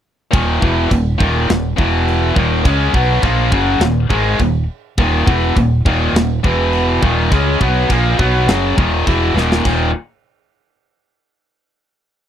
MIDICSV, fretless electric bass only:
0, 0, Header, 1, 2, 480
1, 0, Start_track
1, 0, Key_signature, -6, "minor"
1, 0, Tempo, 581959
1, 271, Time_signature, 4, 2, 24, 8
1, 10136, End_track
2, 0, Start_track
2, 0, Title_t, "Fretless electric bass"
2, 0, Program_c, 0, 35
2, 270, Note_on_c, 0, 27, 93
2, 493, Note_off_c, 0, 27, 0
2, 511, Note_on_c, 0, 28, 98
2, 734, Note_off_c, 0, 28, 0
2, 751, Note_on_c, 0, 27, 85
2, 973, Note_off_c, 0, 27, 0
2, 991, Note_on_c, 0, 27, 91
2, 1213, Note_off_c, 0, 27, 0
2, 1234, Note_on_c, 0, 27, 73
2, 1454, Note_off_c, 0, 27, 0
2, 1467, Note_on_c, 0, 28, 96
2, 1915, Note_off_c, 0, 28, 0
2, 1944, Note_on_c, 0, 27, 98
2, 2169, Note_off_c, 0, 27, 0
2, 2179, Note_on_c, 0, 37, 99
2, 2407, Note_off_c, 0, 37, 0
2, 2418, Note_on_c, 0, 35, 104
2, 2646, Note_off_c, 0, 35, 0
2, 2662, Note_on_c, 0, 34, 99
2, 2889, Note_off_c, 0, 34, 0
2, 2897, Note_on_c, 0, 30, 92
2, 3126, Note_off_c, 0, 30, 0
2, 3130, Note_on_c, 0, 27, 76
2, 3363, Note_off_c, 0, 27, 0
2, 3377, Note_on_c, 0, 32, 100
2, 3607, Note_off_c, 0, 32, 0
2, 3622, Note_on_c, 0, 27, 85
2, 3850, Note_off_c, 0, 27, 0
2, 4102, Note_on_c, 0, 27, 98
2, 4331, Note_off_c, 0, 27, 0
2, 4343, Note_on_c, 0, 28, 106
2, 4571, Note_off_c, 0, 28, 0
2, 4584, Note_on_c, 0, 27, 88
2, 4812, Note_off_c, 0, 27, 0
2, 4823, Note_on_c, 0, 27, 97
2, 5049, Note_off_c, 0, 27, 0
2, 5054, Note_on_c, 0, 27, 77
2, 5288, Note_off_c, 0, 27, 0
2, 5308, Note_on_c, 0, 28, 94
2, 5760, Note_off_c, 0, 28, 0
2, 5790, Note_on_c, 0, 27, 94
2, 6017, Note_off_c, 0, 27, 0
2, 6029, Note_on_c, 0, 37, 95
2, 6257, Note_off_c, 0, 37, 0
2, 6270, Note_on_c, 0, 35, 97
2, 6497, Note_off_c, 0, 35, 0
2, 6508, Note_on_c, 0, 34, 100
2, 6736, Note_off_c, 0, 34, 0
2, 6755, Note_on_c, 0, 35, 96
2, 6980, Note_off_c, 0, 35, 0
2, 6984, Note_on_c, 0, 30, 86
2, 7215, Note_off_c, 0, 30, 0
2, 7235, Note_on_c, 0, 27, 94
2, 7460, Note_off_c, 0, 27, 0
2, 7478, Note_on_c, 0, 28, 99
2, 7700, Note_off_c, 0, 28, 0
2, 7705, Note_on_c, 0, 27, 89
2, 7935, Note_off_c, 0, 27, 0
2, 7958, Note_on_c, 0, 27, 94
2, 8182, Note_off_c, 0, 27, 0
2, 10136, End_track
0, 0, End_of_file